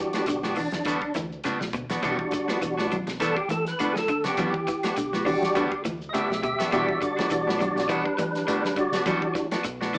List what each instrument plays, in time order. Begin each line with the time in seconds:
Already playing: fingered electric bass E3, tonewheel organ G4
0.00 clean electric guitar E3, tonewheel organ G3 D4 F#4
0.13 clean electric guitar B3 D4 F#4, snare, closed hi-hat, high conga, claves, shekere
0.26 fingered electric bass B1, clean electric guitar D3, muted clean electric guitar stroke, closed hi-hat, high conga, shekere
0.43 clean electric guitar B3 D4 F#4, snare, high conga
0.56 clean electric guitar E3, tonewheel organ D4, open hi-hat, low conga, claves, shekere
0.72 fingered electric bass E2, muted clean electric guitar stroke, snare, closed hi-hat, low conga
0.85 clean electric guitar D3 G3 B3 D4 F#4, kick, snare, closed hi-hat, high conga, shekere
1.02 muted clean electric guitar stroke, kick, claves
1.14 fingered electric bass D2, clean electric guitar E3, muted clean electric guitar stroke, snare, closed hi-hat, high conga, shekere
1.32 shekere
1.44 clean electric guitar C#3 G3 B3 D4 F#4, snare, closed hi-hat, high conga, claves, shekere
1.60 fingered electric bass B1, muted clean electric guitar stroke, snare, high conga
1.73 fingered electric bass D2, clean electric guitar B2, muted clean electric guitar stroke, kick, closed hi-hat, shekere
1.90 fingered electric bass E2, clean electric guitar B3 D4 F#4, snare, closed hi-hat, shekere
2.02 fingered electric bass E2, clean electric guitar B2 G3 B3 D4 F#4, tonewheel organ G3 D4 F#4, kick, snare, closed hi-hat, high conga, low conga, claves, shekere
2.19 muted clean electric guitar stroke, kick
2.31 clean electric guitar D3, muted clean electric guitar stroke, kick, snare, closed hi-hat, shekere
2.48 clean electric guitar B3 D4 F#4, snare, high conga, claves, shekere
2.61 fingered electric bass B1, clean electric guitar E3, muted clean electric guitar stroke, closed hi-hat, high conga, shekere
2.78 clean electric guitar B3 D4 F#4, snare, high conga
2.92 clean electric guitar F#3, closed hi-hat, high conga, low conga, claves, shekere
3.07 fingered electric bass B1, muted clean electric guitar stroke, snare, closed hi-hat, low conga
3.20 clean electric guitar E3 G3 B3 D4 F#4, tonewheel organ A4, kick, closed hi-hat, high conga, shekere
3.37 tonewheel organ G4, muted clean electric guitar stroke, kick, claves
3.48 fingered electric bass E3, clean electric guitar E3, tonewheel organ A4, muted clean electric guitar stroke, closed hi-hat, high conga, shekere
3.66 tonewheel organ B4, snare, closed hi-hat, shekere
3.79 clean electric guitar D3 G3 B3 D4 F#4, snare, closed hi-hat, high conga, claves, shekere
3.93 tonewheel organ G#4, muted clean electric guitar stroke, snare
3.97 tonewheel organ A4, high conga
4.08 clean electric guitar D3, muted clean electric guitar stroke, kick, closed hi-hat, shekere
4.24 fingered electric bass C#3, clean electric guitar B3 D4 F#4, tonewheel organ G4, snare, closed hi-hat, shekere
4.37 fingered electric bass E3, clean electric guitar F#3 G3 B3 D4 F#4, kick, closed hi-hat, high conga, low conga, claves, shekere
4.54 muted clean electric guitar stroke, kick
4.67 clean electric guitar E3, muted clean electric guitar stroke, kick, snare, closed hi-hat, shekere
4.83 clean electric guitar B3 D4 F#4, snare, closed hi-hat, high conga, claves, shekere
4.97 fingered electric bass B1, clean electric guitar D3, muted clean electric guitar stroke, closed hi-hat, high conga, shekere
5.13 clean electric guitar B3 F#4, snare, high conga
5.25 clean electric guitar E3, tonewheel organ G3 D4 F#4 G4, open hi-hat, low conga, claves, shekere
5.42 fingered electric bass E2, muted clean electric guitar stroke, snare, closed hi-hat
5.55 clean electric guitar D3 G3 B3 D4 F#4, kick, closed hi-hat, high conga, shekere
5.72 muted clean electric guitar stroke, kick, claves
5.85 fingered electric bass D2, clean electric guitar E3, muted clean electric guitar stroke, closed hi-hat, high conga, shekere
6.02 shekere
6.09 clean electric guitar G3, tonewheel organ D#5
6.13 clean electric guitar C#3 B3 D4 F#4, tonewheel organ G4 E5, closed hi-hat, high conga, claves, shekere
6.30 fingered electric bass B1, muted clean electric guitar stroke, snare, high conga
6.42 fingered electric bass D2, clean electric guitar B2, tonewheel organ G4 E5, muted clean electric guitar stroke, kick, closed hi-hat, shekere
6.59 fingered electric bass E2, clean electric guitar B3 D4 F#4, snare, closed hi-hat, shekere
6.71 fingered electric bass E2, clean electric guitar B2 G3 B3 D4 F#4, tonewheel organ G3 D4 F#4 G4 E5, kick, closed hi-hat, high conga, low conga, claves, shekere
6.88 muted clean electric guitar stroke, kick
7.01 clean electric guitar D3, tonewheel organ F#4 D5, muted clean electric guitar stroke, kick, closed hi-hat, shekere
7.16 clean electric guitar B3 D4 F#4, snare, high conga, claves, shekere
7.30 fingered electric bass B1, clean electric guitar E3, tonewheel organ F#4 D5, muted clean electric guitar stroke, closed hi-hat, high conga, shekere
7.47 clean electric guitar B3 D4, snare, high conga
7.59 clean electric guitar F#3, tonewheel organ F#4 D5, closed hi-hat, high conga, low conga, claves, shekere
7.76 fingered electric bass B1, muted clean electric guitar stroke, snare, closed hi-hat, low conga
7.89 clean electric guitar E3 B3 D4 F#4, tonewheel organ D4 B4, muted clean electric guitar stroke, kick, closed hi-hat, high conga, shekere
8.05 muted clean electric guitar stroke, kick, claves
8.18 clean electric guitar E3, fingered electric bass E3, tonewheel organ D4 B4, muted clean electric guitar stroke, closed hi-hat, high conga, shekere
8.35 snare, closed hi-hat, shekere
8.47 clean electric guitar D3 G3 B3 D4 F#4, tonewheel organ D4 B4, closed hi-hat, high conga, claves, shekere
8.64 muted clean electric guitar stroke, snare
8.76 clean electric guitar D3, tonewheel organ F#4 D5, muted clean electric guitar stroke, kick, closed hi-hat, shekere
8.92 fingered electric bass C#3, clean electric guitar B3 D4 F#4, snare, closed hi-hat, shekere
9.06 fingered electric bass E3, clean electric guitar F#3 G3 B3 D4 F#4, tonewheel organ G3 D4 F#4, kick, snare, closed hi-hat, high conga, low conga, claves, shekere
9.22 muted clean electric guitar stroke, kick
9.35 clean electric guitar E3, muted clean electric guitar stroke, kick, snare, closed hi-hat, shekere
9.51 clean electric guitar B3 D4 F#4, snare, closed hi-hat, high conga, claves, shekere
9.64 fingered electric bass B1, muted clean electric guitar stroke, closed hi-hat, high conga, shekere
9.81 clean electric guitar B3 D4 F#4, snare, high conga
9.93 clean electric guitar E3, tonewheel organ D5, open hi-hat, claves, shekere